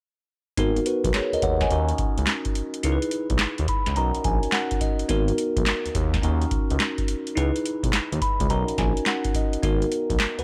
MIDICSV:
0, 0, Header, 1, 4, 480
1, 0, Start_track
1, 0, Key_signature, 5, "minor"
1, 0, Tempo, 566038
1, 487, Time_signature, 4, 2, 24, 8
1, 8852, End_track
2, 0, Start_track
2, 0, Title_t, "Tine electric piano"
2, 0, Program_c, 0, 4
2, 487, Note_on_c, 0, 59, 72
2, 490, Note_on_c, 0, 63, 65
2, 497, Note_on_c, 0, 66, 64
2, 505, Note_on_c, 0, 70, 85
2, 673, Control_c, 0, 64, 127
2, 727, Note_off_c, 0, 66, 0
2, 731, Note_off_c, 0, 70, 0
2, 733, Note_on_c, 0, 71, 59
2, 738, Note_on_c, 0, 66, 54
2, 958, Note_off_c, 0, 71, 0
2, 960, Note_off_c, 0, 66, 0
2, 974, Note_on_c, 0, 73, 62
2, 979, Note_on_c, 0, 68, 57
2, 1121, Note_off_c, 0, 73, 0
2, 1123, Note_off_c, 0, 68, 0
2, 1133, Note_on_c, 0, 75, 73
2, 1136, Note_on_c, 0, 70, 59
2, 1207, Note_off_c, 0, 75, 0
2, 1208, Note_off_c, 0, 70, 0
2, 1213, Note_on_c, 0, 78, 64
2, 1217, Note_on_c, 0, 73, 56
2, 1360, Note_off_c, 0, 78, 0
2, 1362, Note_off_c, 0, 73, 0
2, 1372, Note_on_c, 0, 80, 67
2, 1379, Note_on_c, 0, 75, 53
2, 1427, Note_off_c, 0, 59, 0
2, 1429, Note_off_c, 0, 63, 0
2, 1442, Note_on_c, 0, 61, 71
2, 1450, Note_on_c, 0, 63, 64
2, 1456, Control_c, 0, 64, 0
2, 1456, Note_on_c, 0, 66, 66
2, 1463, Note_on_c, 0, 70, 75
2, 1597, Note_off_c, 0, 80, 0
2, 1600, Note_off_c, 0, 75, 0
2, 1603, Control_c, 0, 64, 127
2, 2385, Note_off_c, 0, 61, 0
2, 2389, Note_off_c, 0, 63, 0
2, 2392, Note_off_c, 0, 66, 0
2, 2395, Note_off_c, 0, 70, 0
2, 2400, Note_on_c, 0, 63, 72
2, 2406, Note_on_c, 0, 64, 66
2, 2413, Note_on_c, 0, 68, 64
2, 2416, Control_c, 0, 64, 0
2, 2419, Note_on_c, 0, 70, 64
2, 2476, Note_on_c, 0, 71, 82
2, 2485, Note_off_c, 0, 70, 0
2, 2543, Control_c, 0, 64, 127
2, 3129, Note_on_c, 0, 83, 64
2, 3344, Note_off_c, 0, 63, 0
2, 3347, Note_off_c, 0, 64, 0
2, 3351, Note_off_c, 0, 68, 0
2, 3351, Note_off_c, 0, 83, 0
2, 3353, Note_on_c, 0, 61, 74
2, 3363, Note_on_c, 0, 63, 66
2, 3365, Note_on_c, 0, 82, 68
2, 3369, Note_on_c, 0, 66, 70
2, 3375, Note_on_c, 0, 70, 80
2, 3378, Control_c, 0, 64, 0
2, 3383, Note_off_c, 0, 71, 0
2, 3536, Control_c, 0, 64, 127
2, 3589, Note_off_c, 0, 82, 0
2, 3604, Note_on_c, 0, 80, 71
2, 3828, Note_off_c, 0, 80, 0
2, 3840, Note_on_c, 0, 78, 74
2, 4066, Note_off_c, 0, 78, 0
2, 4080, Note_on_c, 0, 75, 68
2, 4300, Note_off_c, 0, 61, 0
2, 4305, Note_off_c, 0, 63, 0
2, 4306, Note_off_c, 0, 75, 0
2, 4309, Note_off_c, 0, 66, 0
2, 4312, Note_off_c, 0, 70, 0
2, 4313, Note_on_c, 0, 59, 79
2, 4316, Note_on_c, 0, 63, 65
2, 4325, Note_on_c, 0, 66, 65
2, 4330, Note_on_c, 0, 70, 87
2, 4338, Control_c, 0, 64, 0
2, 4471, Control_c, 0, 64, 127
2, 5260, Note_off_c, 0, 59, 0
2, 5262, Note_off_c, 0, 63, 0
2, 5266, Note_off_c, 0, 66, 0
2, 5269, Note_off_c, 0, 70, 0
2, 5273, Note_on_c, 0, 61, 70
2, 5281, Note_on_c, 0, 63, 64
2, 5288, Note_on_c, 0, 66, 67
2, 5294, Note_on_c, 0, 70, 81
2, 5297, Control_c, 0, 64, 0
2, 5441, Control_c, 0, 64, 127
2, 6220, Note_off_c, 0, 61, 0
2, 6224, Note_off_c, 0, 63, 0
2, 6228, Note_off_c, 0, 66, 0
2, 6231, Note_off_c, 0, 70, 0
2, 6235, Note_on_c, 0, 63, 80
2, 6242, Note_on_c, 0, 64, 68
2, 6250, Note_on_c, 0, 68, 64
2, 6256, Note_on_c, 0, 71, 83
2, 6258, Control_c, 0, 64, 0
2, 6417, Control_c, 0, 64, 127
2, 6971, Note_on_c, 0, 83, 64
2, 7181, Note_off_c, 0, 63, 0
2, 7185, Note_off_c, 0, 64, 0
2, 7189, Note_off_c, 0, 68, 0
2, 7192, Note_off_c, 0, 71, 0
2, 7192, Note_off_c, 0, 83, 0
2, 7201, Note_on_c, 0, 61, 73
2, 7208, Note_on_c, 0, 63, 61
2, 7212, Note_on_c, 0, 82, 67
2, 7216, Control_c, 0, 64, 0
2, 7217, Note_on_c, 0, 66, 64
2, 7223, Note_on_c, 0, 70, 80
2, 7366, Control_c, 0, 64, 127
2, 7433, Note_off_c, 0, 82, 0
2, 7451, Note_on_c, 0, 80, 66
2, 7672, Note_off_c, 0, 80, 0
2, 7694, Note_on_c, 0, 78, 78
2, 7914, Note_off_c, 0, 78, 0
2, 7935, Note_on_c, 0, 75, 69
2, 8144, Note_off_c, 0, 61, 0
2, 8148, Note_off_c, 0, 63, 0
2, 8153, Note_off_c, 0, 66, 0
2, 8154, Note_off_c, 0, 75, 0
2, 8156, Note_off_c, 0, 70, 0
2, 8163, Note_on_c, 0, 59, 75
2, 8169, Note_on_c, 0, 63, 67
2, 8176, Note_on_c, 0, 66, 64
2, 8179, Control_c, 0, 64, 0
2, 8181, Note_on_c, 0, 70, 82
2, 8301, Control_c, 0, 64, 127
2, 8407, Note_off_c, 0, 66, 0
2, 8409, Note_off_c, 0, 70, 0
2, 8809, Note_on_c, 0, 71, 64
2, 8815, Note_on_c, 0, 66, 56
2, 8852, Note_off_c, 0, 59, 0
2, 8852, Note_off_c, 0, 63, 0
2, 8852, Note_off_c, 0, 66, 0
2, 8852, Note_off_c, 0, 71, 0
2, 8852, End_track
3, 0, Start_track
3, 0, Title_t, "Analog synth bass"
3, 0, Program_c, 1, 38
3, 491, Note_on_c, 1, 32, 98
3, 676, Note_off_c, 1, 32, 0
3, 887, Note_on_c, 1, 35, 87
3, 950, Note_off_c, 1, 35, 0
3, 1127, Note_on_c, 1, 39, 46
3, 1159, Note_off_c, 1, 39, 0
3, 1209, Note_on_c, 1, 39, 87
3, 1395, Note_off_c, 1, 39, 0
3, 1449, Note_on_c, 1, 39, 102
3, 1635, Note_off_c, 1, 39, 0
3, 1688, Note_on_c, 1, 37, 54
3, 1751, Note_off_c, 1, 37, 0
3, 1846, Note_on_c, 1, 37, 89
3, 1909, Note_off_c, 1, 37, 0
3, 2408, Note_on_c, 1, 37, 104
3, 2530, Note_off_c, 1, 37, 0
3, 2802, Note_on_c, 1, 35, 85
3, 2867, Note_off_c, 1, 35, 0
3, 3046, Note_on_c, 1, 39, 87
3, 3109, Note_off_c, 1, 39, 0
3, 3285, Note_on_c, 1, 37, 91
3, 3348, Note_off_c, 1, 37, 0
3, 3366, Note_on_c, 1, 35, 105
3, 3490, Note_off_c, 1, 35, 0
3, 3526, Note_on_c, 1, 34, 51
3, 3558, Note_off_c, 1, 34, 0
3, 3604, Note_on_c, 1, 34, 94
3, 3728, Note_off_c, 1, 34, 0
3, 4324, Note_on_c, 1, 32, 103
3, 4512, Note_off_c, 1, 32, 0
3, 4722, Note_on_c, 1, 35, 91
3, 4787, Note_off_c, 1, 35, 0
3, 4968, Note_on_c, 1, 39, 45
3, 5000, Note_off_c, 1, 39, 0
3, 5046, Note_on_c, 1, 39, 91
3, 5233, Note_off_c, 1, 39, 0
3, 5286, Note_on_c, 1, 39, 101
3, 5473, Note_off_c, 1, 39, 0
3, 5526, Note_on_c, 1, 37, 51
3, 5589, Note_off_c, 1, 37, 0
3, 5687, Note_on_c, 1, 37, 94
3, 5750, Note_off_c, 1, 37, 0
3, 6252, Note_on_c, 1, 37, 103
3, 6373, Note_off_c, 1, 37, 0
3, 6645, Note_on_c, 1, 35, 82
3, 6708, Note_off_c, 1, 35, 0
3, 6887, Note_on_c, 1, 39, 86
3, 6950, Note_off_c, 1, 39, 0
3, 7127, Note_on_c, 1, 37, 93
3, 7190, Note_off_c, 1, 37, 0
3, 7208, Note_on_c, 1, 35, 103
3, 7331, Note_off_c, 1, 35, 0
3, 7365, Note_on_c, 1, 34, 53
3, 7398, Note_off_c, 1, 34, 0
3, 7449, Note_on_c, 1, 34, 93
3, 7571, Note_off_c, 1, 34, 0
3, 8167, Note_on_c, 1, 32, 109
3, 8354, Note_off_c, 1, 32, 0
3, 8566, Note_on_c, 1, 35, 84
3, 8629, Note_off_c, 1, 35, 0
3, 8806, Note_on_c, 1, 39, 45
3, 8839, Note_off_c, 1, 39, 0
3, 8852, End_track
4, 0, Start_track
4, 0, Title_t, "Drums"
4, 488, Note_on_c, 9, 36, 115
4, 488, Note_on_c, 9, 42, 90
4, 572, Note_off_c, 9, 36, 0
4, 572, Note_off_c, 9, 42, 0
4, 648, Note_on_c, 9, 42, 45
4, 728, Note_off_c, 9, 42, 0
4, 728, Note_on_c, 9, 42, 72
4, 813, Note_off_c, 9, 42, 0
4, 884, Note_on_c, 9, 36, 85
4, 886, Note_on_c, 9, 42, 55
4, 966, Note_on_c, 9, 38, 111
4, 967, Note_off_c, 9, 42, 0
4, 967, Note_on_c, 9, 42, 77
4, 969, Note_off_c, 9, 36, 0
4, 970, Note_on_c, 9, 39, 93
4, 1051, Note_off_c, 9, 38, 0
4, 1052, Note_off_c, 9, 42, 0
4, 1055, Note_off_c, 9, 39, 0
4, 1131, Note_on_c, 9, 42, 50
4, 1206, Note_off_c, 9, 42, 0
4, 1206, Note_on_c, 9, 42, 77
4, 1207, Note_on_c, 9, 36, 84
4, 1291, Note_off_c, 9, 42, 0
4, 1292, Note_off_c, 9, 36, 0
4, 1363, Note_on_c, 9, 38, 62
4, 1364, Note_on_c, 9, 42, 50
4, 1366, Note_on_c, 9, 36, 82
4, 1446, Note_off_c, 9, 42, 0
4, 1446, Note_on_c, 9, 42, 67
4, 1448, Note_off_c, 9, 38, 0
4, 1450, Note_off_c, 9, 36, 0
4, 1531, Note_off_c, 9, 42, 0
4, 1599, Note_on_c, 9, 42, 43
4, 1682, Note_off_c, 9, 42, 0
4, 1682, Note_on_c, 9, 42, 65
4, 1685, Note_on_c, 9, 36, 96
4, 1767, Note_off_c, 9, 42, 0
4, 1770, Note_off_c, 9, 36, 0
4, 1845, Note_on_c, 9, 42, 52
4, 1922, Note_off_c, 9, 42, 0
4, 1922, Note_on_c, 9, 42, 69
4, 1923, Note_on_c, 9, 38, 110
4, 1927, Note_on_c, 9, 39, 86
4, 2007, Note_off_c, 9, 42, 0
4, 2008, Note_off_c, 9, 38, 0
4, 2012, Note_off_c, 9, 39, 0
4, 2077, Note_on_c, 9, 42, 47
4, 2082, Note_on_c, 9, 36, 77
4, 2162, Note_off_c, 9, 42, 0
4, 2165, Note_on_c, 9, 42, 78
4, 2167, Note_off_c, 9, 36, 0
4, 2250, Note_off_c, 9, 42, 0
4, 2322, Note_on_c, 9, 42, 54
4, 2403, Note_off_c, 9, 42, 0
4, 2403, Note_on_c, 9, 42, 85
4, 2488, Note_off_c, 9, 42, 0
4, 2563, Note_on_c, 9, 42, 51
4, 2640, Note_off_c, 9, 42, 0
4, 2640, Note_on_c, 9, 42, 69
4, 2725, Note_off_c, 9, 42, 0
4, 2797, Note_on_c, 9, 42, 56
4, 2799, Note_on_c, 9, 36, 87
4, 2873, Note_on_c, 9, 38, 111
4, 2874, Note_off_c, 9, 42, 0
4, 2874, Note_on_c, 9, 42, 75
4, 2877, Note_on_c, 9, 39, 87
4, 2884, Note_off_c, 9, 36, 0
4, 2958, Note_off_c, 9, 38, 0
4, 2959, Note_off_c, 9, 42, 0
4, 2962, Note_off_c, 9, 39, 0
4, 3037, Note_on_c, 9, 42, 52
4, 3121, Note_off_c, 9, 42, 0
4, 3121, Note_on_c, 9, 42, 76
4, 3122, Note_on_c, 9, 36, 84
4, 3206, Note_off_c, 9, 42, 0
4, 3207, Note_off_c, 9, 36, 0
4, 3276, Note_on_c, 9, 38, 64
4, 3277, Note_on_c, 9, 42, 50
4, 3358, Note_off_c, 9, 42, 0
4, 3358, Note_on_c, 9, 42, 65
4, 3361, Note_off_c, 9, 38, 0
4, 3443, Note_off_c, 9, 42, 0
4, 3515, Note_on_c, 9, 42, 46
4, 3599, Note_off_c, 9, 42, 0
4, 3599, Note_on_c, 9, 42, 63
4, 3601, Note_on_c, 9, 36, 95
4, 3683, Note_off_c, 9, 42, 0
4, 3686, Note_off_c, 9, 36, 0
4, 3756, Note_on_c, 9, 42, 52
4, 3834, Note_off_c, 9, 42, 0
4, 3834, Note_on_c, 9, 42, 67
4, 3835, Note_on_c, 9, 38, 103
4, 3839, Note_on_c, 9, 39, 90
4, 3919, Note_off_c, 9, 42, 0
4, 3920, Note_off_c, 9, 38, 0
4, 3924, Note_off_c, 9, 39, 0
4, 3994, Note_on_c, 9, 42, 48
4, 3999, Note_on_c, 9, 36, 83
4, 4078, Note_off_c, 9, 42, 0
4, 4078, Note_on_c, 9, 42, 83
4, 4079, Note_off_c, 9, 36, 0
4, 4079, Note_on_c, 9, 36, 89
4, 4162, Note_off_c, 9, 42, 0
4, 4164, Note_off_c, 9, 36, 0
4, 4235, Note_on_c, 9, 42, 51
4, 4316, Note_off_c, 9, 42, 0
4, 4316, Note_on_c, 9, 42, 85
4, 4321, Note_on_c, 9, 36, 108
4, 4401, Note_off_c, 9, 42, 0
4, 4406, Note_off_c, 9, 36, 0
4, 4479, Note_on_c, 9, 42, 50
4, 4563, Note_off_c, 9, 42, 0
4, 4563, Note_on_c, 9, 42, 75
4, 4648, Note_off_c, 9, 42, 0
4, 4720, Note_on_c, 9, 36, 93
4, 4721, Note_on_c, 9, 42, 54
4, 4802, Note_on_c, 9, 38, 111
4, 4803, Note_off_c, 9, 42, 0
4, 4803, Note_on_c, 9, 42, 75
4, 4805, Note_off_c, 9, 36, 0
4, 4806, Note_on_c, 9, 39, 91
4, 4887, Note_off_c, 9, 38, 0
4, 4888, Note_off_c, 9, 42, 0
4, 4891, Note_off_c, 9, 39, 0
4, 4965, Note_on_c, 9, 42, 51
4, 5044, Note_on_c, 9, 36, 81
4, 5045, Note_off_c, 9, 42, 0
4, 5045, Note_on_c, 9, 42, 84
4, 5129, Note_off_c, 9, 36, 0
4, 5130, Note_off_c, 9, 42, 0
4, 5203, Note_on_c, 9, 36, 80
4, 5205, Note_on_c, 9, 38, 63
4, 5205, Note_on_c, 9, 42, 51
4, 5286, Note_off_c, 9, 42, 0
4, 5286, Note_on_c, 9, 42, 68
4, 5288, Note_off_c, 9, 36, 0
4, 5289, Note_off_c, 9, 38, 0
4, 5371, Note_off_c, 9, 42, 0
4, 5440, Note_on_c, 9, 42, 42
4, 5522, Note_off_c, 9, 42, 0
4, 5522, Note_on_c, 9, 42, 64
4, 5523, Note_on_c, 9, 36, 94
4, 5607, Note_off_c, 9, 42, 0
4, 5608, Note_off_c, 9, 36, 0
4, 5685, Note_on_c, 9, 42, 54
4, 5765, Note_off_c, 9, 42, 0
4, 5765, Note_on_c, 9, 42, 69
4, 5766, Note_on_c, 9, 38, 104
4, 5770, Note_on_c, 9, 39, 83
4, 5850, Note_off_c, 9, 42, 0
4, 5851, Note_off_c, 9, 38, 0
4, 5855, Note_off_c, 9, 39, 0
4, 5920, Note_on_c, 9, 42, 47
4, 5922, Note_on_c, 9, 36, 83
4, 6005, Note_off_c, 9, 42, 0
4, 6005, Note_on_c, 9, 42, 82
4, 6007, Note_off_c, 9, 36, 0
4, 6090, Note_off_c, 9, 42, 0
4, 6164, Note_on_c, 9, 42, 56
4, 6248, Note_off_c, 9, 42, 0
4, 6250, Note_on_c, 9, 42, 86
4, 6335, Note_off_c, 9, 42, 0
4, 6408, Note_on_c, 9, 42, 46
4, 6492, Note_off_c, 9, 42, 0
4, 6492, Note_on_c, 9, 42, 70
4, 6576, Note_off_c, 9, 42, 0
4, 6643, Note_on_c, 9, 36, 90
4, 6646, Note_on_c, 9, 42, 59
4, 6725, Note_on_c, 9, 38, 120
4, 6726, Note_off_c, 9, 42, 0
4, 6726, Note_on_c, 9, 42, 74
4, 6728, Note_off_c, 9, 36, 0
4, 6729, Note_on_c, 9, 39, 91
4, 6810, Note_off_c, 9, 38, 0
4, 6811, Note_off_c, 9, 42, 0
4, 6814, Note_off_c, 9, 39, 0
4, 6889, Note_on_c, 9, 42, 49
4, 6966, Note_on_c, 9, 36, 84
4, 6968, Note_off_c, 9, 42, 0
4, 6968, Note_on_c, 9, 42, 81
4, 7051, Note_off_c, 9, 36, 0
4, 7053, Note_off_c, 9, 42, 0
4, 7125, Note_on_c, 9, 36, 91
4, 7125, Note_on_c, 9, 42, 53
4, 7208, Note_off_c, 9, 42, 0
4, 7208, Note_on_c, 9, 42, 70
4, 7210, Note_off_c, 9, 36, 0
4, 7293, Note_off_c, 9, 42, 0
4, 7364, Note_on_c, 9, 42, 46
4, 7446, Note_off_c, 9, 42, 0
4, 7446, Note_on_c, 9, 36, 90
4, 7446, Note_on_c, 9, 42, 63
4, 7448, Note_on_c, 9, 38, 66
4, 7530, Note_off_c, 9, 36, 0
4, 7530, Note_off_c, 9, 42, 0
4, 7533, Note_off_c, 9, 38, 0
4, 7606, Note_on_c, 9, 42, 51
4, 7684, Note_off_c, 9, 42, 0
4, 7684, Note_on_c, 9, 42, 66
4, 7685, Note_on_c, 9, 38, 96
4, 7689, Note_on_c, 9, 39, 85
4, 7769, Note_off_c, 9, 38, 0
4, 7769, Note_off_c, 9, 42, 0
4, 7773, Note_off_c, 9, 39, 0
4, 7840, Note_on_c, 9, 42, 48
4, 7843, Note_on_c, 9, 36, 80
4, 7924, Note_off_c, 9, 36, 0
4, 7924, Note_off_c, 9, 42, 0
4, 7924, Note_on_c, 9, 36, 91
4, 7925, Note_on_c, 9, 42, 80
4, 8009, Note_off_c, 9, 36, 0
4, 8010, Note_off_c, 9, 42, 0
4, 8083, Note_on_c, 9, 42, 56
4, 8167, Note_on_c, 9, 36, 108
4, 8168, Note_off_c, 9, 42, 0
4, 8168, Note_on_c, 9, 42, 82
4, 8251, Note_off_c, 9, 36, 0
4, 8253, Note_off_c, 9, 42, 0
4, 8327, Note_on_c, 9, 42, 46
4, 8409, Note_off_c, 9, 42, 0
4, 8409, Note_on_c, 9, 42, 71
4, 8494, Note_off_c, 9, 42, 0
4, 8564, Note_on_c, 9, 36, 89
4, 8566, Note_on_c, 9, 42, 55
4, 8647, Note_on_c, 9, 38, 115
4, 8648, Note_off_c, 9, 42, 0
4, 8648, Note_on_c, 9, 42, 75
4, 8649, Note_off_c, 9, 36, 0
4, 8651, Note_on_c, 9, 39, 97
4, 8732, Note_off_c, 9, 38, 0
4, 8733, Note_off_c, 9, 42, 0
4, 8736, Note_off_c, 9, 39, 0
4, 8808, Note_on_c, 9, 42, 52
4, 8852, Note_off_c, 9, 42, 0
4, 8852, End_track
0, 0, End_of_file